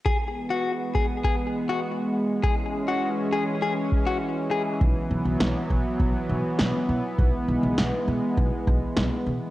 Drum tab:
SD |--------|--------|--o---o-|--o---o-|
BD |o--oo---|o----o--|o--oo---|o---oo--|